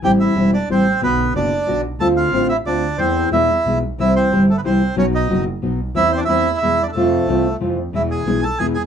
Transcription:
<<
  \new Staff \with { instrumentName = "Bandoneon" } { \time 3/4 \key a \minor \tempo 4 = 182 <g' g''>8 <e' e''>4 <d' d''>8 <c' c''>4 | <b b'>4 <d' d''>4. r8 | <a' a''>8 <f' f''>4 <e' e''>8 <d' d''>4 | <c' c''>4 <e' e''>4. r8 |
<e' e''>8 <c' c''>4 <a a'>16 <b b'>16 <c' c''>4 | <cis' cis''>8 <dis' dis''>4 r4. | <e' e''>8 <c' c''>16 <d' d''>16 <e' e''>4 <e' e''>8. <d' d''>16 | <a a'>2 r4 |
<e' e''>8 <gis' gis''>4 <a' a''>8 <gis' gis''>8 <gis' gis''>8 | }
  \new Staff \with { instrumentName = "Nylon-string guitar" } { \time 3/4 \key a \minor <e g c' e'>4 <e g c' e'>8 r8 <e g c' e'>8 r8 | <b, d b d' fis'>4 <b, d b d' fis'>8 r8 <b, d b d' fis'>8 r8 | <d a c' f'>4 <d a c' f'>8 r8 <d a c' f'>8 r8 | <e a c' e'>4 <b, e gis b e'>8 r8 <b, e gis b e'>8 r8 |
<c e g c' e'>4 <c e g c' e'>8 r8 <c e g c' e'>8 r8 | <b, fis b dis' fis'>4 <b, fis b dis' fis'>8 r8 <b, fis b dis' fis'>8 r8 | <e a c' e'>4 <e a c' e'>8 r8 <b, e gis b e'>8 r8 | <c a c' f'>4 <c e a c' f'>8 r8 <c e a c' f'>8 r8 |
<b, e gis b e'>4 <b, e gis b e'>8 r8 <b, e gis b e'>8 r8 | }
  \new Staff \with { instrumentName = "Double bass" } { \clef bass \time 3/4 \key a \minor a,,4 e,,4 a,,4 | b,,4 fis,,4 b,,4 | d,4 a,,4 d,4 | e,4 e,4 b,,4 |
c,4 g,,4 c,4 | b,,4 fis,,4 b,,4 | e,4 e,4 e,4 | f,4 c,4 f,4 |
e,4 b,,4 e,4 | }
>>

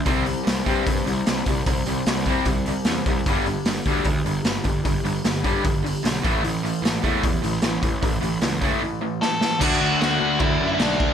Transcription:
<<
  \new Staff \with { instrumentName = "Lead electric guitar" } { \time 4/4 \key d \major \tempo 4 = 151 r1 | r1 | r1 | r1 |
r1 | r2. <a' a''>4 | <fis' fis''>4 <fis' fis''>4 <e' e''>4 <d' d''>4 | }
  \new Staff \with { instrumentName = "Distorted electric guitar" } { \time 4/4 \key d \major r1 | r1 | r1 | r1 |
r1 | r1 | <d a d'>1 | }
  \new Staff \with { instrumentName = "Distorted electric guitar" } { \clef bass \time 4/4 \key d \major <c g c'>8 <c g>8 <c g>8 <c g c'>8 <c g>8 <c g>8 <c g>8 <c g>8 | <c g>8 <c g>8 <c g>8 <c g c'>8 <c g>8 <c g>8 <c g>8 <c g>8 | <g, d g>8 <g, d>8 <g, d>8 <g, d g>8 <g, d>8 <g, d>8 <g, d>8 <g, d>8 | <g, d>8 <g, d>8 <g, d>8 <g, d g>8 <g, d>8 <g, d>8 <g, d>8 <a, e a>8 |
<a, e>8 <a, e>8 <a, e>8 <a, e a>8 <a, e>8 <a, e>8 <a, e>8 <a, e>8 | <a, e>8 <a, e>8 <a, e>8 <a, e a>8 <a, e>8 <a, e>8 <a, e>8 <a, e>8 | <d a d'>1 | }
  \new Staff \with { instrumentName = "Overdriven electric guitar" } { \clef bass \time 4/4 \key d \major <c g c'>8 <c g>8 <c g>8 <c g c'>8 <c g>8 <c g>8 <c g>8 <c g>8 | <c g>8 <c g>8 <c g>8 <c g c'>8 <c g>8 <c g>8 <c g>8 <c g>8 | <g, d g>8 <g, d>8 <g, d>8 <g, d g>8 <g, d>8 <g, d>8 <g, d>8 <g, d>8 | <g, d>8 <g, d>8 <g, d>8 <g, d g>8 <g, d>8 <g, d>8 <g, d>8 <a, e a>8 |
<a, e>8 <a, e>8 <a, e>8 <a, e a>8 <a, e>8 <a, e>8 <a, e>8 <a, e>8 | <a, e>8 <a, e>8 <a, e>8 <a, e a>8 <a, e>8 <a, e>8 <a, e>8 <a, e>8 | <d a d'>1 | }
  \new Staff \with { instrumentName = "Picked electric bass" } { \clef bass \time 4/4 \key d \major c,4 c,8 g,8 g,8 c,8 c,8 c,8 | c,8 c,8 c,4 c,4 e,8 c,8 | g,,4 g,,8 d,8 d,8 g,,8 g,,8 g,,8 | g,,8 g,,8 g,,4 g,,4 b,,8 a,,8 |
a,,4 a,,8 e,8 e,8 a,,8 a,,8 a,,8 | a,,8 a,,8 cis,4 r2 | d,8 d,8 d,8 d,8 d,8 fis,8 b,,8 d,8 | }
  \new DrumStaff \with { instrumentName = "Drums" } \drummode { \time 4/4 <hho bd>8 hho8 <hho sn>8 <hho bd>8 <hho bd>8 hho8 <hho sn>8 <hho bd>8 | <hho bd>8 hho8 <hho sn>8 <hho bd>8 <hho bd>8 hho8 <hho sn>8 <hho bd>8 | <hho bd>8 hho8 <hho sn>8 <hho bd>8 <hho bd>8 hho8 <hho sn>8 <hho bd>8 | <hho bd>8 hho8 <hho sn>8 <hho bd>8 <hho bd>8 hho8 <hho sn>8 <hho bd>8 |
hho8 hho8 <hho sn>8 <hho bd>8 <hho bd>8 hho8 <hho sn>8 <hho bd>8 | <hho bd>8 hho8 <hho sn>8 <hho bd>8 r4 sn8 sn8 | <cymc bd>4 <cymc sn>4 <cymc bd>4 <cymc sn>8 bd8 | }
>>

